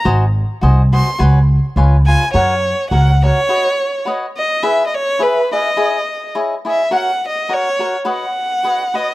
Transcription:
0.05 0.42 G#1 medium
0.05 0.24 F#4 medium
0.05 0.24 C5 medium
0.05 0.24 D#5 medium
0.05 0.24 G#5 medium
0.61 1.00 C2 medium
0.61 0.81 F#4 medium
0.61 0.81 C5 medium
0.61 0.81 D#5 medium
0.61 0.81 G#5 medium
0.92 1.09 F#4 medium
0.92 1.09 C5 soft
0.92 1.09 D#5 soft
0.92 1.09 G#5 medium
0.92 1.18 C6 medium
1.18 1.57 C#2 loud
1.18 1.38 F#4 medium
1.18 1.38 B4 medium
1.18 1.38 C#5 medium
1.18 1.38 G#5 medium
1.76 2.14 C#2 medium
1.76 1.96 F4 medium
1.76 1.96 B4 medium
1.76 1.96 C#5 medium
1.76 1.96 G#5 medium
2.06 2.24 F4 medium
2.06 2.24 B4 medium
2.06 2.24 C#5 medium
2.06 2.31 G#5 medium
2.06 2.24 G#5 medium
2.33 2.71 F#2 medium
2.33 2.53 F#4 medium
2.33 2.53 A#4 medium
2.33 2.87 C#5 medium
2.33 2.53 C#5 medium
2.33 2.54 F#5 medium
2.90 3.29 C#2 medium
2.90 3.10 F#4 medium
2.90 3.11 A#4 medium
2.90 3.11 C#5 medium
2.90 3.20 F#5 medium
2.90 3.11 F#5 medium
3.23 3.39 F#4 soft
3.23 3.39 A#4 soft
3.23 3.39 C#5 medium
3.23 4.04 C#5 medium
3.23 3.40 F#5 soft
3.49 3.68 F#4 medium
3.49 3.68 B4 medium
3.49 3.68 C#5 medium
3.49 3.68 D#5 medium
4.05 4.25 F#4 medium
4.05 4.25 B4 medium
4.05 4.26 C#5 medium
4.05 4.26 D#5 medium
4.37 4.65 D#5 medium
4.63 4.82 E4 medium
4.63 4.82 G#4 medium
4.63 4.82 B4 medium
4.63 4.86 E5 medium
4.63 4.83 E5 medium
4.87 4.96 D#5 medium
4.94 5.24 C#5 medium
5.19 5.39 E4 medium
5.19 5.39 G#4 soft
5.19 5.39 B4 medium
5.19 5.51 B4 medium
5.19 5.40 E5 medium
5.51 5.67 E4 soft
5.51 5.68 G#4 soft
5.51 5.68 B4 medium
5.51 6.31 D#5 medium
5.51 5.68 E5 medium
5.76 5.96 E4 medium
5.76 5.96 G#4 medium
5.76 5.96 C#5 medium
5.76 5.96 D#5 medium
6.35 6.54 E4 medium
6.35 6.54 G#4 medium
6.35 6.54 C#5 medium
6.35 6.54 D#5 medium
6.65 6.81 E4 soft
6.65 6.82 G#4 soft
6.65 6.82 C#5 medium
6.65 6.82 D#5 soft
6.70 6.92 E5 medium
6.91 7.10 F#4 medium
6.91 7.10 A#4 medium
6.91 7.11 C#5 medium
6.91 7.11 F#5 medium
6.91 7.22 F#5 medium
7.28 7.55 D#5 medium
7.49 7.68 F#4 medium
7.49 7.68 A#4 medium
7.49 7.68 C#5 medium
7.49 7.69 F#5 medium
7.53 7.95 C#5 medium
7.79 7.95 F#4 soft
7.79 7.96 A#4 soft
7.79 7.96 C#5 soft
7.79 7.96 F#5 soft
8.05 8.24 F#4 medium
8.05 8.25 B4 medium
8.05 8.25 C#5 medium
8.05 8.25 D#5 medium
8.10 8.97 F#5 medium
8.63 8.82 F#4 soft
8.63 8.83 B4 medium
8.63 8.83 C#5 medium
8.63 8.83 D#5 medium
8.94 9.10 F#4 soft
8.94 9.10 B4 soft
8.94 9.10 C#5 soft
8.94 9.14 D#5 medium
8.94 9.10 D#5 medium

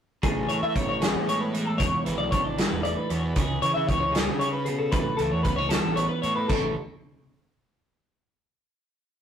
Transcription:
0.23 0.45 A1 medium
0.23 1.02 A2 medium
0.23 0.50 G#4 medium
0.23 kick loud
0.23 closed hi-hat medium
0.49 0.61 A2 medium
0.49 1.53 E3 medium
0.49 0.62 C#5 medium
0.49 closed hi-hat medium
0.63 0.74 A2 medium
0.63 0.76 E5 medium
0.75 1.16 A1 medium
0.75 1.77 C#4 medium
0.75 0.88 C#5 medium
0.75 kick medium
0.75 closed hi-hat medium
0.89 1.02 C#5 medium
1.01 1.79 E2 medium
1.01 1.28 G#4 medium
1.01 snare loud
1.01 closed hi-hat medium
1.15 1.82 A2 medium
1.27 2.37 G#3 medium
1.27 1.41 C#5 medium
1.27 closed hi-hat medium
1.41 1.53 B4 medium
1.53 2.06 E3 medium
1.53 1.65 G#4 medium
1.53 closed hi-hat medium
1.65 1.78 A4 medium
1.78 1.91 E1 medium
1.78 2.57 E2 medium
1.78 2.04 C#5 medium
1.78 kick loud
1.78 closed hi-hat medium
2.04 2.18 G#1 medium
2.04 3.62 E3 medium
2.04 2.18 B4 medium
2.04 closed hi-hat medium
2.18 2.31 B1 medium
2.18 2.31 D5 medium
2.31 2.65 G#1 medium
2.31 3.34 D4 medium
2.31 2.44 C#5 medium
2.31 kick medium
2.31 closed hi-hat medium
2.44 2.58 D5 medium
2.58 2.84 G#2 medium
2.58 2.83 B4 medium
2.58 snare loud
2.58 closed hi-hat medium
2.72 2.93 E1 medium
2.83 3.10 A2 medium
2.83 2.97 D5 medium
2.83 closed hi-hat medium
2.97 3.10 B4 medium
3.10 3.32 E2 medium
3.10 3.36 B2 medium
3.10 3.23 C#5 medium
3.10 closed hi-hat medium
3.23 3.37 B4 medium
3.36 3.58 C#2 medium
3.36 3.63 C#3 medium
3.36 3.62 G#4 medium
3.36 kick loud
3.36 closed hi-hat medium
3.62 3.73 C#3 medium
3.62 4.15 E3 medium
3.62 3.74 C#5 medium
3.62 closed hi-hat medium
3.74 3.87 C#3 medium
3.74 3.87 E5 medium
3.88 4.29 C#2 medium
3.88 5.44 C#4 soft
3.88 3.99 C#5 medium
3.88 kick medium
3.88 closed hi-hat medium
4.00 4.14 C#5 medium
4.12 4.41 D3 medium
4.12 4.40 G#4 medium
4.12 snare loud
4.12 closed hi-hat medium
4.27 4.94 C#3 medium
4.39 4.67 C#3 medium
4.39 4.52 C#5 medium
4.39 closed hi-hat medium
4.52 4.66 B4 medium
4.65 4.93 B2 medium
4.65 4.78 G#4 medium
4.65 closed hi-hat medium
4.79 4.93 A4 medium
4.92 5.04 A1 medium
4.92 5.72 A2 medium
4.92 5.19 B4 medium
4.92 kick loud
4.92 closed hi-hat medium
5.17 5.30 C#2 medium
5.17 6.23 E3 medium
5.17 5.31 A4 medium
5.17 closed hi-hat medium
5.31 5.43 E2 medium
5.31 5.43 C#5 medium
5.43 5.78 C#2 medium
5.43 5.58 B3 medium
5.43 5.56 B4 medium
5.43 kick medium
5.43 closed hi-hat medium
5.56 6.50 C#4 soft
5.56 5.70 C#5 medium
5.69 5.96 A4 medium
5.69 snare loud
5.69 closed hi-hat medium
5.73 6.51 E2 medium
5.85 6.07 A1 medium
5.96 6.47 B3 medium
5.96 6.09 C#5 medium
5.96 closed hi-hat medium
6.09 6.22 B4 medium
6.22 6.45 A2 medium
6.22 6.47 E3 medium
6.22 6.35 C#5 medium
6.22 closed hi-hat medium
6.36 6.49 B4 medium
6.48 6.74 A1 medium
6.48 6.73 A2 medium
6.48 6.74 E3 medium
6.48 6.74 B3 medium
6.48 6.74 C#4 medium
6.48 6.73 A4 medium
6.48 kick loud
6.48 crash medium
6.53 6.75 F#4 soft

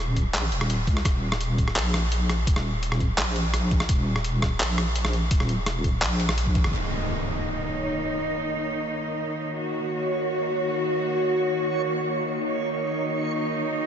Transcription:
0.00 0.36 D#1 loud
0.16 kick medium
0.16 closed hi-hat soft
0.34 0.53 A#1 medium
0.34 cross-stick soft
0.34 clap loud
0.34 closed hi-hat medium
0.52 0.89 D#1 loud
0.52 closed hi-hat soft
0.61 cross-stick medium
0.70 closed hi-hat medium
0.87 1.04 C#2 loud
0.87 kick loud
0.87 closed hi-hat soft
0.97 cross-stick soft
1.05 1.78 D#1 loud
1.05 kick loud
1.05 cross-stick medium
1.05 closed hi-hat medium
1.32 cross-stick medium
1.41 closed hi-hat medium
1.58 kick medium
1.58 closed hi-hat soft
1.68 cross-stick medium
1.76 2.46 A#1 medium
1.76 clap loud
1.76 closed hi-hat medium
1.94 cross-stick medium
1.94 closed hi-hat soft
2.12 closed hi-hat medium
2.29 cross-stick medium
2.29 closed hi-hat soft
2.47 3.20 D#1 medium
2.47 kick loud
2.47 closed hi-hat medium
2.56 cross-stick medium
2.83 closed hi-hat medium
2.92 cross-stick medium
3.00 kick medium
3.00 closed hi-hat soft
3.18 3.88 A#1 medium
3.18 cross-stick medium
3.18 clap loud
3.18 closed hi-hat medium
3.36 closed hi-hat soft
3.54 cross-stick medium
3.54 closed hi-hat medium
3.71 kick loud
3.71 closed hi-hat soft
3.80 cross-stick medium
3.89 4.62 D#1 loud
3.89 kick loud
3.89 closed hi-hat medium
4.16 cross-stick medium
4.24 closed hi-hat medium
4.42 kick medium
4.42 cross-stick medium
4.42 closed hi-hat soft
4.60 5.30 A#1 medium
4.60 clap loud
4.60 closed hi-hat medium
4.78 cross-stick medium
4.78 closed hi-hat soft
4.96 closed hi-hat medium
5.05 cross-stick medium
5.13 closed hi-hat soft
5.31 6.04 D#1 loud
5.31 kick loud
5.31 closed hi-hat medium
5.40 cross-stick medium
5.49 closed hi-hat soft
5.66 cross-stick medium
5.66 closed hi-hat medium
5.84 kick medium
5.84 closed hi-hat soft
6.02 6.64 A#1 medium
6.02 cross-stick medium
6.02 clap loud
6.02 closed hi-hat medium
6.20 closed hi-hat soft
6.29 cross-stick medium
6.38 closed hi-hat medium
6.47 kick medium
6.55 kick loud
6.55 closed hi-hat soft
6.64 6.72 G#1 loud
6.64 cross-stick medium
6.73 13.87 D#3 medium
6.73 13.87 A#3 medium
6.73 9.56 D#4 medium
6.73 13.87 C#5 medium
6.73 impact medium
9.57 12.40 F#4 medium
12.41 13.87 D#4 medium

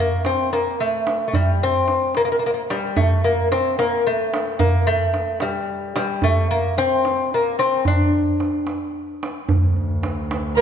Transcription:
0.00 0.26 A#3 medium
0.25 0.52 C4 medium
0.25 tombak tek medium
0.53 0.81 A#3 medium
0.53 tombak tek medium
0.80 1.27 A3 medium
1.07 tombak tek medium
1.28 1.34 A3 medium
1.33 1.62 G3 medium
1.33 tombak dum medium
1.62 2.13 C4 medium
1.62 tombak ka soft
1.88 tombak tek medium
2.15 2.24 A#3 medium
2.15 tombak tek medium
2.25 2.31 A#3 medium
2.32 2.38 A#3 medium
2.39 2.45 A#3 soft
2.43 2.53 A#3 medium
2.43 tombak ka soft
2.54 2.61 A#3 soft
2.70 2.98 G3 medium
2.70 tombak tek medium
2.96 3.24 A3 medium
2.96 tombak dum medium
3.24 3.51 A#3 medium
3.52 3.78 C4 medium
3.52 tombak tek medium
3.79 4.07 A#3 medium
3.79 tombak tek medium
4.07 4.62 A3 medium
4.34 tombak tek medium
4.59 4.88 A#3 medium
4.59 tombak dum medium
4.87 5.41 A3 medium
5.14 tombak tek medium
5.40 5.95 G3 medium
5.40 tombak tek medium
5.96 6.24 G3 medium
5.96 tombak tek medium
6.22 6.50 A3 medium
6.22 tombak dum medium
6.51 6.78 A#3 medium
6.78 7.34 C4 medium
6.78 tombak tek medium
7.05 tombak tek medium
7.34 7.59 A#3 medium
7.59 7.87 C4 medium
7.59 tombak tek medium
7.85 9.19 D4 medium
7.85 tombak dum medium
8.12 tombak ka soft
8.40 tombak tek soft
8.67 tombak tek medium
9.23 tombak tek medium
9.49 10.61 D2 medium
9.49 tombak dum medium
9.76 tombak ka soft
10.03 tombak tek medium
10.31 tombak tek medium
10.57 10.61 A#3 medium
10.57 10.61 A#4 medium

